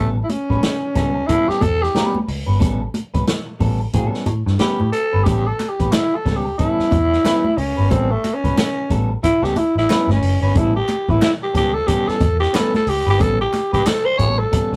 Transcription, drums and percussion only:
0.29 closed hi-hat medium
0.29 muted conga medium
0.50 kick medium
0.63 snare loud
0.63 closed hi-hat medium
0.63 high conga medium
0.95 kick medium
0.95 snare soft
0.95 closed hi-hat medium
0.95 muted conga soft
1.29 kick medium
1.29 closed hi-hat medium
1.50 snare soft
1.61 kick loud
1.61 closed hi-hat medium
1.61 muted conga medium
1.61 low conga medium
1.83 snare soft
1.95 snare loud
1.95 closed hi-hat medium
1.95 high conga medium
2.15 high conga medium
2.28 open hi-hat medium
2.60 kick loud
2.60 closed hi-hat medium
2.60 muted conga medium
2.94 closed hi-hat medium
2.94 muted conga medium
3.14 kick medium
3.14 closed hi-hat soft
3.27 snare loud
3.27 closed hi-hat medium
3.27 high conga medium
3.60 kick medium
3.60 open hi-hat soft
3.60 muted conga soft
3.93 kick medium
3.93 closed hi-hat medium
4.14 snare soft
4.26 closed hi-hat medium
4.26 muted conga medium
4.26 low conga medium
4.47 snare soft
4.59 snare loud
4.59 closed hi-hat medium
4.59 high conga medium
4.80 high conga medium
4.93 closed hi-hat medium
5.26 kick loud
5.26 closed hi-hat medium
5.26 muted conga medium
5.59 clap medium
5.59 closed hi-hat medium
5.59 muted conga medium
5.80 kick medium
5.80 closed hi-hat medium
5.92 snare loud
5.92 clap medium
5.92 closed hi-hat medium
5.92 high conga medium
6.26 kick medium
6.26 snare soft
6.26 open hi-hat soft
6.26 muted conga soft
6.59 kick loud
6.59 closed hi-hat medium
6.79 snare soft
6.91 kick loud
6.91 closed hi-hat medium
6.91 muted conga medium
6.91 low conga medium
7.13 snare soft
7.25 snare medium
7.25 clap loud
7.25 closed hi-hat medium
7.25 high conga medium
7.44 high conga medium
7.58 open hi-hat medium
7.91 kick loud
7.91 closed hi-hat medium
7.91 muted conga medium
8.24 clap medium
8.24 closed hi-hat medium
8.24 muted conga medium
8.44 kick medium
8.44 closed hi-hat soft
8.57 snare loud
8.57 clap loud
8.57 closed hi-hat loud
8.57 high conga medium
8.90 kick medium
8.90 closed hi-hat medium
8.90 muted conga soft
9.24 kick loud
9.24 closed hi-hat medium
9.44 snare soft
9.56 closed hi-hat medium
9.56 muted conga medium
9.56 low conga medium
9.78 snare soft
9.90 snare loud
9.90 clap loud
9.90 closed hi-hat medium
9.90 high conga medium
10.10 snare soft
10.10 high conga medium
10.22 open hi-hat medium
10.55 kick loud
10.55 closed hi-hat medium
10.55 muted conga medium
10.88 clap medium
10.88 closed hi-hat medium
10.88 muted conga medium
11.08 kick medium
11.21 snare loud
11.21 clap loud
11.21 closed hi-hat medium
11.21 high conga medium
11.55 kick medium
11.55 snare soft
11.55 closed hi-hat medium
11.55 muted conga soft
11.88 kick medium
11.88 closed hi-hat loud
12.08 snare soft
12.21 kick medium
12.21 closed hi-hat medium
12.21 muted conga medium
12.21 low conga medium
12.42 snare soft
12.54 snare loud
12.54 clap loud
12.54 closed hi-hat medium
12.54 high conga medium
12.74 snare soft
12.74 high conga medium
12.87 open hi-hat medium
13.20 kick loud
13.20 closed hi-hat medium
13.20 muted conga medium
13.53 clap medium
13.53 closed hi-hat medium
13.53 muted conga medium
13.73 kick medium
13.73 closed hi-hat medium
13.86 snare loud
13.86 clap loud
13.86 closed hi-hat medium
13.86 high conga medium
14.19 kick medium
14.19 closed hi-hat medium
14.53 kick medium
14.53 closed hi-hat medium
14.53 low conga medium
14.73 snare soft

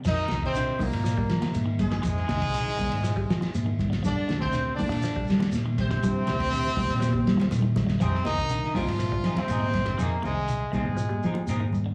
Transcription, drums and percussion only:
0.05 kick medium
0.05 crash medium
0.05 shekere medium
0.28 snare medium
0.28 ride bell medium
0.28 high conga medium
0.28 shekere soft
0.43 kick medium
0.43 snare soft
0.55 snare soft
0.55 ride bell medium
0.55 shekere loud
0.79 kick medium
0.79 open hi-hat medium
0.79 high conga medium
0.79 low conga medium
0.79 shekere soft
0.92 ride bell medium
0.92 high conga medium
1.06 snare soft
1.06 ride bell medium
1.06 shekere medium
1.17 kick medium
1.17 high conga medium
1.30 snare medium
1.30 ride bell medium
1.30 shekere soft
1.42 snare medium
1.42 ride bell medium
1.42 high conga loud
1.54 ride bell medium
1.54 high conga medium
1.54 shekere loud
1.79 kick medium
1.79 ride bell medium
1.79 high conga medium
1.79 low conga loud
1.79 shekere soft
1.91 kick medium
1.91 snare medium
1.91 ride bell medium
2.03 kick loud
2.03 ride bell medium
2.03 shekere loud
2.17 snare soft
2.29 snare medium
2.29 ride bell medium
2.29 high conga loud
2.29 shekere soft
2.42 kick medium
2.42 snare soft
2.42 ride bell medium
2.54 snare soft
2.54 ride bell medium
2.54 shekere loud
2.67 snare soft
2.79 kick medium
2.79 open hi-hat medium
2.79 high conga medium
2.79 low conga medium
2.79 shekere soft
2.92 ride bell medium
3.04 snare soft
3.04 ride bell medium
3.04 shekere medium
3.17 kick medium
3.30 snare medium
3.30 ride bell medium
3.30 shekere soft
3.42 snare medium
3.42 ride bell medium
3.42 high conga medium
3.54 ride bell medium
3.54 high conga loud
3.54 shekere medium
3.67 high conga medium
3.79 kick medium
3.79 ride bell soft
3.79 high conga medium
3.79 low conga medium
3.79 shekere soft
3.92 kick medium
3.92 snare medium
3.92 ride bell medium
4.04 kick medium
4.04 ride bell medium
4.04 shekere medium
4.29 snare medium
4.29 ride bell medium
4.29 high conga loud
4.29 shekere soft
4.42 kick medium
4.52 ride bell medium
4.52 shekere loud
4.78 kick medium
4.78 open hi-hat medium
4.78 high conga medium
4.78 low conga medium
4.78 shekere soft
4.91 ride bell medium
4.91 high conga medium
5.02 ride bell medium
5.02 shekere medium
5.16 kick medium
5.27 snare medium
5.27 ride bell medium
5.27 shekere soft
5.40 snare medium
5.40 ride bell medium
5.40 high conga loud
5.52 snare soft
5.52 ride bell medium
5.52 high conga medium
5.52 shekere medium
5.78 kick medium
5.78 snare soft
5.78 ride bell soft
5.78 high conga medium
5.78 low conga medium
5.78 shekere soft
5.91 kick medium
5.91 snare medium
5.91 ride bell medium
6.03 kick loud
6.03 ride bell medium
6.03 shekere medium
6.27 snare medium
6.27 ride bell medium
6.27 high conga loud
6.27 shekere soft
6.40 kick medium
6.40 ride bell medium
6.53 snare soft
6.53 ride bell medium
6.53 shekere medium
6.66 snare soft
6.77 kick medium
6.77 open hi-hat medium
6.77 high conga medium
6.77 low conga medium
6.77 shekere soft
6.90 ride bell soft
7.01 snare soft
7.01 ride bell medium
7.01 high conga loud
7.01 shekere medium
7.08 high conga medium
7.14 kick medium
7.14 high conga medium
7.27 snare medium
7.27 ride bell medium
7.27 shekere soft
7.34 low conga medium
7.39 snare medium
7.39 ride bell medium
7.39 low conga loud
7.51 ride bell soft
7.51 low conga loud
7.51 shekere medium
7.60 low conga medium
7.76 kick medium
7.76 snare soft
7.76 ride bell soft
7.76 low conga loud
7.76 shekere soft
7.84 low conga loud
7.89 kick medium
7.89 snare medium
7.89 ride bell medium
7.89 low conga medium
8.01 kick medium
8.01 ride bell medium
8.01 shekere medium
8.15 snare soft
8.25 snare medium
8.25 ride bell medium
8.25 high conga loud
8.25 shekere soft
8.38 kick medium
8.49 ride bell medium
8.49 shekere loud
8.64 snare soft
8.75 kick medium
8.75 snare soft
8.75 open hi-hat medium
8.75 high conga medium
8.75 low conga medium
8.75 shekere soft
8.88 snare soft
8.88 ride bell medium
8.88 high conga medium
9.00 snare soft
9.00 ride bell medium
9.00 shekere medium
9.12 kick medium
9.24 snare medium
9.24 ride bell medium
9.24 shekere soft
9.36 snare medium
9.36 ride bell medium
9.36 high conga medium
9.36 low conga medium
9.48 ride bell medium
9.48 high conga medium
9.48 shekere medium
9.61 high conga medium
9.74 kick medium
9.74 snare soft
9.74 ride bell soft
9.74 low conga medium
9.74 shekere soft
9.86 kick medium
9.86 snare medium
9.86 ride bell medium
9.99 shekere medium
10.23 high conga medium
10.23 shekere soft
10.48 shekere loud
10.73 high conga medium
10.73 low conga medium
10.73 shekere soft
10.86 high conga medium
10.97 shekere medium
11.11 high conga medium
11.23 shekere soft
11.35 high conga loud
11.47 high conga loud
11.47 shekere medium
11.60 high conga medium
11.73 high conga medium
11.73 low conga medium
11.73 shekere soft

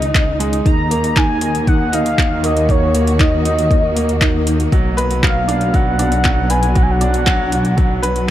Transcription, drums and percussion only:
0.02 closed hi-hat soft
0.15 kick loud
0.15 clap medium
0.15 closed hi-hat soft
0.40 closed hi-hat medium
0.53 closed hi-hat soft
0.66 kick loud
0.66 closed hi-hat soft
0.91 closed hi-hat medium
1.04 closed hi-hat soft
1.16 kick loud
1.16 clap medium
1.16 closed hi-hat soft
1.41 closed hi-hat medium
1.55 closed hi-hat soft
1.67 kick loud
1.67 closed hi-hat soft
1.93 closed hi-hat medium
2.06 closed hi-hat soft
2.18 kick loud
2.18 clap medium
2.18 closed hi-hat soft
2.44 closed hi-hat medium
2.57 closed hi-hat soft
2.69 kick loud
2.69 closed hi-hat soft
2.95 closed hi-hat medium
3.07 closed hi-hat soft
3.20 kick loud
3.20 clap medium
3.20 closed hi-hat soft
3.45 closed hi-hat medium
3.59 closed hi-hat soft
3.71 kick loud
3.71 closed hi-hat soft
3.97 closed hi-hat medium
4.09 closed hi-hat soft
4.21 kick loud
4.21 clap medium
4.21 closed hi-hat soft
4.47 closed hi-hat medium
4.60 closed hi-hat soft
4.72 kick loud
4.72 closed hi-hat soft
4.98 closed hi-hat medium
5.11 closed hi-hat soft
5.23 kick loud
5.23 clap medium
5.23 closed hi-hat soft
5.49 closed hi-hat medium
5.61 closed hi-hat soft
5.74 kick loud
5.74 closed hi-hat soft
5.99 closed hi-hat medium
6.12 closed hi-hat soft
6.24 kick loud
6.24 clap medium
6.24 closed hi-hat soft
6.50 closed hi-hat medium
6.63 closed hi-hat soft
6.75 kick loud
6.75 closed hi-hat soft
7.01 closed hi-hat medium
7.14 closed hi-hat soft
7.27 kick loud
7.27 clap loud
7.27 closed hi-hat soft
7.52 closed hi-hat medium
7.65 closed hi-hat soft
7.78 kick loud
7.78 closed hi-hat soft
8.03 closed hi-hat medium
8.16 closed hi-hat soft

